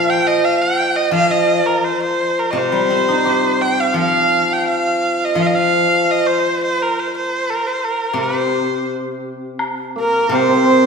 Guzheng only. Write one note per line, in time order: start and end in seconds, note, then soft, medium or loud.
0.00 0.41 A#2 soft
0.00 1.10 F3 soft
1.11 3.25 F3 medium
2.53 3.96 C3 soft
2.72 4.15 G3 soft
2.90 4.33 C4 soft
3.08 4.50 D#4 soft
3.25 4.68 G4 soft
3.94 5.34 F3 soft
5.35 7.47 F3 medium
8.13 10.28 C3 soft
10.29 10.86 C3 medium